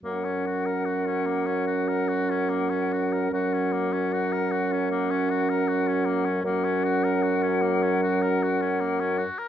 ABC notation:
X:1
M:4/4
L:1/16
Q:1/4=76
K:F#
V:1 name="Flute"
f16 | f16 | f12- f2 z2 |]
V:2 name="Clarinet"
C16 | C16 | C12- C2 z2 |]
V:3 name="Oboe"
A, C F A F C A, C F A F C A, C F A | F C A, C F A F C A, C F A F C A, C | A, C F A F C A, C F A F C A, C F A |]
V:4 name="French horn" clef=bass
F,16 | F,16 | F,12- F,2 z2 |]
V:5 name="Bassoon" clef=bass
F,,16 | F,,16 | F,,12- F,,2 z2 |]